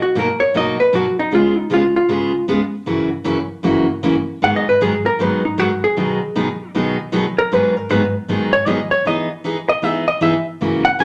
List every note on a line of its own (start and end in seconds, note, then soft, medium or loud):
0.02 0.16 F#4 medium
0.15 0.27 B2 medium
0.15 0.27 F#3 medium
0.15 0.27 A#3 medium
0.15 0.27 D#4 medium
0.15 0.28 F#4 medium
0.15 0.41 A#4 medium
0.40 0.54 C#5 medium
0.54 0.76 B2 medium
0.54 0.76 F#3 medium
0.54 0.76 A#3 medium
0.54 0.77 D#4 medium
0.54 0.77 F#4 medium
0.54 0.80 D#5 loud
0.80 0.93 B4 medium
0.93 1.04 B2 medium
0.93 1.05 F#3 medium
0.93 1.05 A#3 medium
0.93 1.05 D#4 medium
0.93 1.05 F#4 medium
0.93 1.18 F#4 medium
1.19 1.32 D#4 medium
1.31 1.53 C#3 medium
1.31 1.54 G#3 medium
1.31 1.54 B3 medium
1.31 1.54 F4 medium
1.31 1.58 F4 medium
1.31 1.54 G#4 medium
1.58 1.71 D#4 medium
1.70 1.82 C#3 medium
1.70 1.82 G#3 medium
1.70 1.82 B3 medium
1.70 1.83 F4 medium
1.70 1.95 F4 medium
1.70 1.83 G#4 medium
1.96 2.45 F4 medium
2.09 2.31 C#3 medium
2.09 2.31 G#3 medium
2.09 2.31 B3 medium
2.09 2.31 F4 medium
2.09 2.32 G#4 medium
2.48 2.60 C#3 medium
2.48 2.60 G#3 medium
2.48 2.60 B3 medium
2.48 2.60 F4 medium
2.48 2.60 G#4 medium
2.86 3.08 F#2 medium
2.86 3.08 C#3 medium
2.86 3.09 E3 medium
2.86 3.09 A#3 medium
2.86 3.09 C#4 medium
2.86 3.09 F#4 medium
3.24 3.36 F#2 medium
3.24 3.37 C#3 medium
3.24 3.37 E3 medium
3.24 3.37 A#3 medium
3.24 3.37 C#4 medium
3.24 3.37 F#4 medium
3.63 3.85 F#2 medium
3.63 3.86 C#3 medium
3.63 3.86 E3 medium
3.63 3.86 A#3 medium
3.63 3.86 C#4 medium
3.63 3.86 F#4 medium
4.03 4.14 F#2 medium
4.03 4.14 C#3 medium
4.03 4.15 E3 medium
4.03 4.15 A#3 medium
4.03 4.15 C#4 medium
4.03 4.15 F#4 medium
4.42 4.64 G#2 medium
4.42 4.64 D#3 medium
4.42 4.64 F#3 medium
4.42 4.64 B3 medium
4.42 4.64 D#4 medium
4.42 4.64 G#4 medium
4.42 4.55 F#5 medium
4.56 4.68 D#5 medium
4.69 4.81 B4 medium
4.81 4.92 G#2 medium
4.81 4.92 D#3 medium
4.81 4.92 F#3 medium
4.81 4.93 B3 medium
4.81 4.93 D#4 medium
4.81 5.05 G#4 medium
4.81 4.93 G#4 medium
5.06 5.21 A#4 medium
5.19 5.41 G#2 medium
5.19 5.41 D#3 medium
5.19 5.41 F#3 medium
5.19 5.41 B3 medium
5.19 5.41 D#4 medium
5.19 5.42 G#4 medium
5.19 5.44 B4 loud
5.45 5.60 D#4 soft
5.58 5.69 G#2 medium
5.58 5.69 D#3 medium
5.58 5.70 F#3 medium
5.58 5.70 B3 medium
5.58 5.70 D#4 medium
5.58 5.83 F#4 medium
5.58 5.70 G#4 medium
5.84 6.71 G#4 medium
5.96 6.18 B2 medium
5.96 6.18 D#3 medium
5.96 6.19 F#3 medium
5.96 6.19 B3 medium
5.96 6.19 D#4 medium
5.96 6.19 G#4 medium
6.35 6.47 B2 medium
6.35 6.47 D#3 medium
6.35 6.47 F#3 medium
6.35 6.47 B3 medium
6.35 6.47 D#4 medium
6.35 6.48 G#4 medium
6.75 6.96 B2 medium
6.75 6.96 D#3 medium
6.75 6.96 F#3 medium
6.75 6.96 B3 medium
6.75 6.97 D#4 medium
6.75 6.97 G#4 medium
7.12 7.24 B2 medium
7.12 7.24 D#3 medium
7.12 7.24 F#3 medium
7.12 7.24 B3 medium
7.12 7.24 D#4 medium
7.12 7.25 G#4 medium
7.38 7.53 A#4 medium
7.51 7.73 G#2 medium
7.51 7.73 D#3 medium
7.51 7.73 F#3 soft
7.51 7.74 B3 medium
7.51 7.74 D#4 medium
7.51 7.74 G#4 medium
7.51 7.77 B4 medium
7.77 7.91 A#4 medium
7.89 8.01 G#2 medium
7.89 8.02 D#3 medium
7.89 8.02 F#3 medium
7.89 8.02 B3 medium
7.89 8.02 D#4 medium
7.89 8.02 G#4 medium
7.89 8.14 B4 medium
8.28 8.50 G#2 medium
8.28 8.50 D#3 medium
8.28 8.50 F#3 medium
8.28 8.51 B3 medium
8.28 8.51 D#4 medium
8.28 8.51 G#4 medium
8.53 8.68 C#5 medium
8.66 8.78 G#2 medium
8.66 8.78 D#3 medium
8.66 8.78 F#3 medium
8.66 8.79 B3 medium
8.66 8.79 D#4 medium
8.66 8.79 G#4 medium
8.66 8.91 D#5 loud
8.91 9.05 C#5 medium
9.05 9.27 E3 medium
9.05 9.28 B3 medium
9.05 9.28 D#4 medium
9.05 9.28 G#4 medium
9.05 9.31 D#5 medium
9.44 9.56 E3 medium
9.44 9.56 B3 medium
9.44 9.56 D#4 medium
9.44 9.57 G#4 medium
9.69 9.84 D#5 medium
9.82 10.04 E3 medium
9.82 10.05 B3 medium
9.82 10.05 D#4 medium
9.82 10.05 G#4 medium
9.82 10.07 E5 loud
10.08 10.22 D#5 medium
10.21 10.33 E3 medium
10.21 10.33 B3 medium
10.21 10.34 D#4 medium
10.21 10.34 G#4 medium
10.21 10.46 E5 medium
10.61 10.82 F#2 medium
10.61 10.83 C#3 medium
10.61 10.83 E3 medium
10.61 10.83 A#3 medium
10.61 10.83 C#4 medium
10.61 10.83 F#4 medium
10.85 10.99 F#5 loud
10.99 11.04 F#2 medium
10.99 11.04 C#3 medium
10.99 11.04 E3 medium
10.99 11.04 A#3 medium
10.99 11.04 C#4 medium
10.99 11.04 F#4 medium
10.99 11.04 G#5 medium